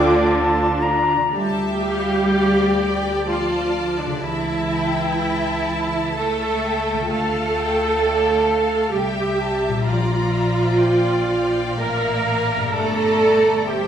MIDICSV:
0, 0, Header, 1, 12, 480
1, 0, Start_track
1, 0, Key_signature, -1, "minor"
1, 0, Tempo, 1065719
1, 605, Time_signature, 3, 2, 24, 8
1, 605, Tempo, 974026
1, 1565, Tempo, 938967
1, 2525, Tempo, 1000000
1, 3005, Tempo, 923077
1, 5405, Tempo, 1005025
1, 5885, Tempo, 938967
1, 6951, End_track
2, 0, Start_track
2, 0, Title_t, "Flute"
2, 0, Program_c, 0, 73
2, 0, Note_on_c, 0, 79, 88
2, 129, Note_on_c, 0, 81, 92
2, 135, Note_off_c, 0, 79, 0
2, 370, Note_on_c, 0, 82, 89
2, 377, Note_off_c, 0, 81, 0
2, 603, Note_off_c, 0, 82, 0
2, 6951, End_track
3, 0, Start_track
3, 0, Title_t, "Violin section"
3, 0, Program_c, 1, 48
3, 0, Note_on_c, 1, 74, 77
3, 128, Note_off_c, 1, 74, 0
3, 605, Note_on_c, 1, 76, 65
3, 605, Note_on_c, 1, 81, 63
3, 828, Note_off_c, 1, 81, 0
3, 851, Note_on_c, 1, 77, 67
3, 1068, Note_off_c, 1, 76, 0
3, 1082, Note_off_c, 1, 77, 0
3, 1088, Note_on_c, 1, 77, 63
3, 1090, Note_on_c, 1, 74, 62
3, 1325, Note_off_c, 1, 77, 0
3, 1335, Note_on_c, 1, 79, 63
3, 1559, Note_off_c, 1, 74, 0
3, 1563, Note_off_c, 1, 79, 0
3, 1565, Note_on_c, 1, 74, 65
3, 1565, Note_on_c, 1, 81, 65
3, 2036, Note_off_c, 1, 74, 0
3, 2036, Note_off_c, 1, 81, 0
3, 2049, Note_on_c, 1, 76, 63
3, 2050, Note_on_c, 1, 81, 61
3, 2519, Note_off_c, 1, 81, 0
3, 2529, Note_on_c, 1, 79, 61
3, 2761, Note_off_c, 1, 79, 0
3, 2768, Note_on_c, 1, 81, 59
3, 3003, Note_off_c, 1, 76, 0
3, 3009, Note_on_c, 1, 76, 61
3, 3483, Note_off_c, 1, 76, 0
3, 3490, Note_off_c, 1, 81, 0
3, 3495, Note_on_c, 1, 77, 62
3, 3496, Note_on_c, 1, 81, 54
3, 3731, Note_off_c, 1, 77, 0
3, 3737, Note_on_c, 1, 79, 63
3, 3959, Note_off_c, 1, 81, 0
3, 3967, Note_off_c, 1, 79, 0
3, 3971, Note_on_c, 1, 77, 54
3, 3973, Note_on_c, 1, 79, 55
3, 4208, Note_off_c, 1, 79, 0
3, 4209, Note_off_c, 1, 77, 0
3, 4215, Note_on_c, 1, 77, 59
3, 4447, Note_on_c, 1, 79, 64
3, 4450, Note_off_c, 1, 77, 0
3, 4451, Note_on_c, 1, 76, 57
3, 4686, Note_off_c, 1, 79, 0
3, 4688, Note_on_c, 1, 81, 58
3, 4924, Note_on_c, 1, 82, 57
3, 4925, Note_on_c, 1, 74, 61
3, 4926, Note_off_c, 1, 81, 0
3, 4927, Note_off_c, 1, 76, 0
3, 5398, Note_off_c, 1, 82, 0
3, 5404, Note_on_c, 1, 79, 57
3, 5633, Note_off_c, 1, 79, 0
3, 5639, Note_on_c, 1, 79, 61
3, 5880, Note_off_c, 1, 79, 0
3, 5884, Note_on_c, 1, 77, 62
3, 6362, Note_off_c, 1, 74, 0
3, 6367, Note_on_c, 1, 82, 58
3, 6368, Note_on_c, 1, 74, 56
3, 6371, Note_off_c, 1, 77, 0
3, 6834, Note_off_c, 1, 74, 0
3, 6834, Note_off_c, 1, 82, 0
3, 6842, Note_on_c, 1, 76, 59
3, 6843, Note_on_c, 1, 79, 56
3, 6951, Note_off_c, 1, 76, 0
3, 6951, Note_off_c, 1, 79, 0
3, 6951, End_track
4, 0, Start_track
4, 0, Title_t, "Violin section"
4, 0, Program_c, 2, 48
4, 0, Note_on_c, 2, 86, 88
4, 125, Note_off_c, 2, 86, 0
4, 1090, Note_on_c, 2, 74, 72
4, 2027, Note_off_c, 2, 74, 0
4, 2053, Note_on_c, 2, 76, 67
4, 2283, Note_off_c, 2, 76, 0
4, 2291, Note_on_c, 2, 79, 64
4, 2529, Note_off_c, 2, 79, 0
4, 2532, Note_on_c, 2, 81, 74
4, 3009, Note_off_c, 2, 81, 0
4, 3010, Note_on_c, 2, 76, 66
4, 3255, Note_off_c, 2, 76, 0
4, 3255, Note_on_c, 2, 79, 65
4, 3492, Note_off_c, 2, 79, 0
4, 3495, Note_on_c, 2, 77, 68
4, 3959, Note_off_c, 2, 77, 0
4, 3966, Note_on_c, 2, 74, 63
4, 4204, Note_off_c, 2, 74, 0
4, 4206, Note_on_c, 2, 77, 66
4, 4441, Note_on_c, 2, 76, 68
4, 4445, Note_off_c, 2, 77, 0
4, 4918, Note_on_c, 2, 74, 60
4, 4922, Note_off_c, 2, 76, 0
4, 5157, Note_off_c, 2, 74, 0
4, 5161, Note_on_c, 2, 76, 61
4, 5402, Note_on_c, 2, 74, 65
4, 5405, Note_off_c, 2, 76, 0
4, 5641, Note_off_c, 2, 74, 0
4, 5642, Note_on_c, 2, 77, 62
4, 5883, Note_on_c, 2, 76, 68
4, 5886, Note_off_c, 2, 77, 0
4, 6371, Note_off_c, 2, 76, 0
4, 6371, Note_on_c, 2, 74, 68
4, 6836, Note_off_c, 2, 74, 0
4, 6845, Note_on_c, 2, 72, 64
4, 6951, Note_off_c, 2, 72, 0
4, 6951, End_track
5, 0, Start_track
5, 0, Title_t, "Oboe"
5, 0, Program_c, 3, 68
5, 0, Note_on_c, 3, 74, 88
5, 456, Note_off_c, 3, 74, 0
5, 6951, End_track
6, 0, Start_track
6, 0, Title_t, "Clarinet"
6, 0, Program_c, 4, 71
6, 0, Note_on_c, 4, 69, 97
6, 439, Note_off_c, 4, 69, 0
6, 6951, End_track
7, 0, Start_track
7, 0, Title_t, "Viola section"
7, 0, Program_c, 5, 48
7, 0, Note_on_c, 5, 62, 91
7, 0, Note_on_c, 5, 65, 89
7, 494, Note_off_c, 5, 62, 0
7, 494, Note_off_c, 5, 65, 0
7, 604, Note_on_c, 5, 67, 92
7, 1545, Note_off_c, 5, 67, 0
7, 1566, Note_on_c, 5, 65, 77
7, 1925, Note_on_c, 5, 62, 67
7, 1926, Note_off_c, 5, 65, 0
7, 2045, Note_off_c, 5, 62, 0
7, 2048, Note_on_c, 5, 64, 86
7, 2988, Note_off_c, 5, 64, 0
7, 3006, Note_on_c, 5, 69, 86
7, 3482, Note_off_c, 5, 69, 0
7, 3489, Note_on_c, 5, 69, 91
7, 4424, Note_off_c, 5, 69, 0
7, 4445, Note_on_c, 5, 67, 80
7, 4921, Note_on_c, 5, 65, 80
7, 4924, Note_off_c, 5, 67, 0
7, 5867, Note_off_c, 5, 65, 0
7, 5883, Note_on_c, 5, 70, 86
7, 6361, Note_off_c, 5, 70, 0
7, 6372, Note_on_c, 5, 69, 89
7, 6846, Note_off_c, 5, 69, 0
7, 6849, Note_on_c, 5, 67, 77
7, 6951, Note_off_c, 5, 67, 0
7, 6951, End_track
8, 0, Start_track
8, 0, Title_t, "Trumpet section"
8, 0, Program_c, 6, 61
8, 0, Note_on_c, 6, 62, 77
8, 127, Note_off_c, 6, 62, 0
8, 6951, End_track
9, 0, Start_track
9, 0, Title_t, "Harp"
9, 0, Program_c, 7, 46
9, 0, Note_on_c, 7, 50, 71
9, 0, Note_on_c, 7, 57, 59
9, 0, Note_on_c, 7, 65, 62
9, 0, Note_on_c, 7, 74, 59
9, 521, Note_off_c, 7, 50, 0
9, 526, Note_on_c, 7, 50, 56
9, 542, Note_off_c, 7, 57, 0
9, 547, Note_on_c, 7, 57, 45
9, 561, Note_off_c, 7, 65, 0
9, 567, Note_on_c, 7, 65, 49
9, 582, Note_off_c, 7, 74, 0
9, 587, Note_on_c, 7, 74, 48
9, 1959, Note_on_c, 7, 49, 54
9, 1975, Note_off_c, 7, 57, 0
9, 1981, Note_on_c, 7, 57, 46
9, 2005, Note_on_c, 7, 67, 46
9, 2020, Note_off_c, 7, 50, 0
9, 2027, Note_on_c, 7, 76, 44
9, 2043, Note_off_c, 7, 65, 0
9, 2055, Note_off_c, 7, 74, 0
9, 3401, Note_on_c, 7, 50, 52
9, 3419, Note_off_c, 7, 57, 0
9, 3425, Note_on_c, 7, 57, 44
9, 3448, Note_on_c, 7, 65, 44
9, 3466, Note_off_c, 7, 49, 0
9, 3472, Note_on_c, 7, 74, 43
9, 3490, Note_off_c, 7, 67, 0
9, 3501, Note_off_c, 7, 76, 0
9, 4829, Note_on_c, 7, 46, 52
9, 4853, Note_on_c, 7, 58, 45
9, 4877, Note_on_c, 7, 67, 40
9, 4894, Note_off_c, 7, 74, 0
9, 4898, Note_off_c, 7, 50, 0
9, 4900, Note_on_c, 7, 74, 44
9, 4910, Note_off_c, 7, 57, 0
9, 5470, Note_off_c, 7, 65, 0
9, 6280, Note_on_c, 7, 43, 54
9, 6296, Note_off_c, 7, 58, 0
9, 6302, Note_on_c, 7, 58, 44
9, 6319, Note_off_c, 7, 67, 0
9, 6325, Note_on_c, 7, 67, 45
9, 6343, Note_off_c, 7, 74, 0
9, 6345, Note_off_c, 7, 46, 0
9, 6349, Note_on_c, 7, 74, 46
9, 6951, Note_off_c, 7, 43, 0
9, 6951, Note_off_c, 7, 58, 0
9, 6951, Note_off_c, 7, 67, 0
9, 6951, Note_off_c, 7, 74, 0
9, 6951, End_track
10, 0, Start_track
10, 0, Title_t, "Cello section"
10, 0, Program_c, 8, 48
10, 0, Note_on_c, 8, 50, 95
10, 512, Note_off_c, 8, 50, 0
10, 606, Note_on_c, 8, 55, 94
10, 1546, Note_off_c, 8, 55, 0
10, 1569, Note_on_c, 8, 53, 72
10, 1927, Note_on_c, 8, 50, 66
10, 1928, Note_off_c, 8, 53, 0
10, 2046, Note_off_c, 8, 50, 0
10, 2049, Note_on_c, 8, 52, 83
10, 2989, Note_off_c, 8, 52, 0
10, 3008, Note_on_c, 8, 57, 82
10, 3486, Note_off_c, 8, 57, 0
10, 3492, Note_on_c, 8, 57, 77
10, 4426, Note_off_c, 8, 57, 0
10, 4448, Note_on_c, 8, 55, 73
10, 4916, Note_off_c, 8, 55, 0
10, 4926, Note_on_c, 8, 53, 75
10, 5888, Note_off_c, 8, 53, 0
10, 5890, Note_on_c, 8, 58, 79
10, 6374, Note_off_c, 8, 58, 0
10, 6374, Note_on_c, 8, 57, 85
10, 6838, Note_off_c, 8, 57, 0
10, 6850, Note_on_c, 8, 55, 66
10, 6951, Note_off_c, 8, 55, 0
10, 6951, End_track
11, 0, Start_track
11, 0, Title_t, "Bassoon"
11, 0, Program_c, 10, 70
11, 0, Note_on_c, 10, 53, 79
11, 438, Note_off_c, 10, 53, 0
11, 6951, End_track
12, 0, Start_track
12, 0, Title_t, "Double bass section"
12, 0, Program_c, 11, 48
12, 0, Note_on_c, 11, 38, 89
12, 513, Note_off_c, 11, 38, 0
12, 605, Note_on_c, 11, 38, 70
12, 2025, Note_off_c, 11, 38, 0
12, 2046, Note_on_c, 11, 37, 71
12, 3470, Note_off_c, 11, 37, 0
12, 3495, Note_on_c, 11, 38, 61
12, 4446, Note_off_c, 11, 38, 0
12, 4449, Note_on_c, 11, 36, 58
12, 4917, Note_off_c, 11, 36, 0
12, 4926, Note_on_c, 11, 34, 64
12, 5869, Note_off_c, 11, 34, 0
12, 5888, Note_on_c, 11, 33, 55
12, 6373, Note_off_c, 11, 33, 0
12, 6373, Note_on_c, 11, 31, 68
12, 6951, Note_off_c, 11, 31, 0
12, 6951, End_track
0, 0, End_of_file